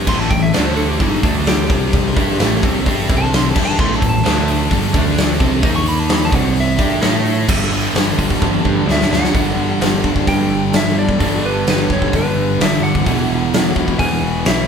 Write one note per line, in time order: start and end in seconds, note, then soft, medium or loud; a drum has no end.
0.00 1.20 A4 medium
0.00 0.53 E5 medium
0.00 0.54 C#6 medium
0.07 0.29 A1 loud
0.07 0.27 A2 loud
0.07 0.27 E3 loud
0.07 0.30 A3 loud
0.07 0.20 C6 loud
0.07 kick loud
0.07 crash loud
0.20 0.31 A5 medium
0.20 snare soft
0.28 0.52 A1 medium
0.28 0.48 A2 medium
0.28 0.48 E3 medium
0.28 0.42 G5 medium
0.28 kick loud
0.28 open hi-hat medium
0.42 0.54 E5 medium
0.53 0.98 D2 loud
0.53 0.98 D3 medium
0.53 0.99 A3 loud
0.53 0.99 D4 loud
0.53 0.66 D5 loud
0.53 snare loud
0.53 open hi-hat medium
0.65 0.76 C5 loud
0.77 0.88 A4 loud
0.77 open hi-hat medium
0.88 0.99 G4 loud
0.99 1.22 G1 loud
0.99 1.22 G2 medium
0.99 1.21 D3 loud
0.99 1.23 G3 medium
0.99 1.10 E4 loud
0.99 kick loud
0.99 open hi-hat medium
1.11 1.23 D#4 medium
1.23 1.67 D2 loud
1.23 1.68 D3 medium
1.23 1.69 A3 loud
1.23 1.69 D4 medium
1.23 1.46 D4 medium
1.23 kick loud
1.23 open hi-hat medium
1.46 2.82 G4 loud
1.46 snare loud
1.46 open hi-hat medium
1.68 2.13 C2 medium
1.68 2.15 C3 medium
1.68 2.14 G3 loud
1.68 2.15 C4 loud
1.68 kick loud
1.68 open hi-hat medium
1.93 kick loud
1.93 open hi-hat medium
2.14 2.38 G2 medium
2.14 2.38 G3 medium
2.14 2.38 D4 medium
2.14 2.39 G4 loud
2.14 3.07 A4 medium
2.14 3.07 E5 medium
2.14 3.07 C#6 medium
2.14 kick loud
2.14 open hi-hat medium
2.38 2.62 A1 loud
2.38 2.60 A2 loud
2.38 2.61 E3 loud
2.38 2.62 A3 loud
2.38 snare loud
2.38 open hi-hat medium
2.61 2.84 C2 loud
2.61 2.84 C3 loud
2.61 2.84 G3 loud
2.61 2.85 C4 loud
2.61 kick loud
2.61 open hi-hat medium
2.86 3.08 G2 loud
2.86 3.07 G3 loud
2.86 3.08 D4 loud
2.86 3.09 G4 loud
2.86 kick loud
2.86 open hi-hat medium
3.07 3.53 C2 medium
3.07 3.53 C3 loud
3.07 3.53 G3 loud
3.07 3.54 C4 loud
3.07 kick loud
3.07 open hi-hat medium
3.18 3.32 A5 loud
3.33 3.49 C6 loud
3.33 snare loud
3.33 open hi-hat medium
3.49 3.63 A5 loud
3.54 3.77 G2 medium
3.54 3.77 G3 medium
3.54 3.77 D4 medium
3.54 3.77 G4 loud
3.54 4.22 A4 medium
3.54 4.23 E5 medium
3.54 4.23 C#6 medium
3.54 kick loud
3.54 crash loud
3.65 3.79 A5 loud
3.77 4.00 A1 loud
3.77 4.00 A2 loud
3.77 4.01 E3 loud
3.77 4.01 A3 loud
3.77 3.96 C6 loud
3.77 kick loud
3.92 4.08 A5 medium
3.92 snare soft
4.02 4.23 A1 medium
4.02 4.20 A2 medium
4.02 4.21 E3 medium
4.02 kick loud
4.02 open hi-hat medium
4.09 4.99 A5 loud
4.23 4.67 D2 loud
4.23 4.68 D3 medium
4.23 4.69 A3 loud
4.23 4.70 D4 loud
4.23 4.93 A4 medium
4.23 snare loud
4.23 open hi-hat medium
4.48 open hi-hat medium
4.69 4.93 G1 loud
4.69 4.93 G2 loud
4.69 4.91 D3 loud
4.69 4.93 G3 loud
4.69 kick loud
4.69 open hi-hat medium
4.92 5.37 D2 medium
4.92 5.39 D3 loud
4.92 5.39 A3 medium
4.92 5.40 D4 loud
4.92 5.63 A4 medium
4.92 kick loud
4.92 open hi-hat medium
5.18 snare loud
5.18 open hi-hat medium
5.40 5.62 C2 medium
5.40 5.63 C3 medium
5.40 5.63 G3 medium
5.40 5.63 C4 medium
5.40 kick loud
5.40 open hi-hat medium
5.63 6.29 D#2 loud
5.63 6.31 D#3 loud
5.63 6.31 A#3 loud
5.63 6.32 D#4 loud
5.63 6.33 A#4 medium
5.63 6.33 D#5 medium
5.63 6.33 D#6 medium
5.63 kick loud
5.63 open hi-hat medium
5.76 5.87 C#6 medium
5.86 5.99 B5 medium
5.86 open hi-hat medium
5.99 6.13 A5 loud
6.09 snare loud
6.09 open hi-hat medium
6.13 6.23 B5 medium
6.25 6.35 A5 medium
6.31 6.76 C2 loud
6.31 6.78 C3 loud
6.31 6.76 G3 loud
6.31 6.78 C4 loud
6.31 6.56 F#5 loud
6.31 kick loud
6.31 open hi-hat medium
6.55 open hi-hat medium
6.60 7.48 E5 loud
6.77 7.01 G2 loud
6.77 7.01 G3 medium
6.77 7.02 D4 loud
6.77 7.02 G4 loud
6.77 7.47 A4 medium
6.77 7.49 E5 medium
6.77 7.48 C#6 medium
6.77 kick loud
6.77 open hi-hat medium
7.01 7.45 A2 loud
7.01 7.47 A3 medium
7.01 7.48 E4 medium
7.01 7.48 A4 loud
7.01 snare loud
7.01 open hi-hat medium
7.26 open hi-hat medium
7.48 7.65 G1 loud
7.48 7.70 G2 medium
7.48 7.70 D3 loud
7.48 7.71 G3 loud
7.48 9.33 G3 medium
7.48 9.32 D4 medium
7.48 9.32 A4 medium
7.48 kick loud
7.48 crash loud
7.71 7.87 G1 medium
7.71 7.93 G2 medium
7.71 7.94 D3 medium
7.71 7.94 G3 loud
7.71 open hi-hat medium
7.94 8.11 G1 loud
7.94 8.15 G2 medium
7.94 8.16 D3 medium
7.94 8.16 G3 medium
7.94 snare loud
7.94 open hi-hat medium
8.16 8.35 G1 loud
8.16 8.39 G2 medium
8.16 8.40 D3 loud
8.16 8.40 G3 loud
8.16 kick medium
8.16 open hi-hat medium
8.30 kick medium
8.30 snare soft
8.40 8.58 G1 medium
8.40 8.63 G2 loud
8.40 8.63 D3 medium
8.40 8.64 G3 loud
8.40 kick loud
8.40 high tom medium
8.64 8.87 G2 medium
8.64 8.81 G2 medium
8.64 8.87 D3 medium
8.64 8.87 G3 medium
8.64 kick medium
8.86 9.03 D2 medium
8.86 9.10 G2 medium
8.86 9.11 D3 medium
8.86 9.11 G3 medium
8.86 snare medium
8.92 9.14 E5 loud
9.01 snare medium
9.10 9.27 D2 medium
9.10 9.33 G2 medium
9.10 9.33 D3 medium
9.10 9.33 G3 loud
9.10 10.28 F#5 loud
9.10 snare loud
9.24 snare medium
9.34 9.55 G1 loud
9.34 10.06 G2 loud
9.34 10.03 D3 loud
9.34 13.02 G3 medium
9.34 10.03 G3 loud
9.34 13.02 D4 medium
9.34 13.02 A4 medium
9.34 kick loud
9.34 open hi-hat medium
9.56 9.78 G1 medium
9.80 10.23 G1 loud
9.80 snare loud
9.80 open hi-hat medium
10.03 11.18 G2 medium
10.03 11.19 D3 medium
10.03 11.18 G3 loud
10.03 kick medium
10.16 kick medium
10.27 10.49 G2 loud
10.27 10.76 G5 loud
10.27 kick loud
10.27 open hi-hat medium
10.49 10.71 G1 medium
10.73 11.16 G1 loud
10.73 10.98 E5 loud
10.73 snare loud
10.73 open hi-hat medium
10.99 11.46 D5 loud
11.09 kick medium
11.19 11.41 G1 loud
11.19 11.88 G2 loud
11.19 11.88 D3 loud
11.19 11.87 G3 loud
11.19 kick loud
11.19 open hi-hat medium
11.42 11.64 G1 medium
11.42 11.68 B4 medium
11.67 12.09 G1 loud
11.67 11.90 B4 loud
11.67 snare loud
11.67 open hi-hat medium
11.88 13.04 G2 medium
11.88 13.04 D3 medium
11.88 13.04 G3 loud
11.88 kick medium
11.93 12.15 C#5 medium
12.02 kick medium
12.13 12.34 G1 loud
12.13 12.62 B4 loud
12.13 kick loud
12.13 open hi-hat medium
12.35 12.57 G1 medium
12.59 12.80 G1 loud
12.59 12.82 E5 loud
12.59 snare loud
12.59 open hi-hat medium
12.81 13.03 G1 medium
12.81 13.99 F#5 loud
12.95 kick medium
13.05 13.27 E1 loud
13.05 13.73 E2 medium
13.05 13.74 B2 loud
13.05 13.75 E3 loud
13.05 14.67 F#4 medium
13.05 kick loud
13.05 open hi-hat medium
13.09 14.67 E3 medium
13.09 14.67 B3 medium
13.28 13.50 E1 medium
13.52 13.94 E1 medium
13.52 snare loud
13.52 open hi-hat medium
13.76 14.67 E2 medium
13.76 14.67 B2 medium
13.76 14.67 E3 medium
13.76 kick medium
13.88 kick medium
13.99 14.20 E2 loud
13.99 14.47 G#5 loud
13.99 kick medium
13.99 open hi-hat medium
14.21 14.43 E1 loud
14.45 14.67 B1 medium
14.45 14.67 E5 loud
14.45 snare loud
14.45 open hi-hat medium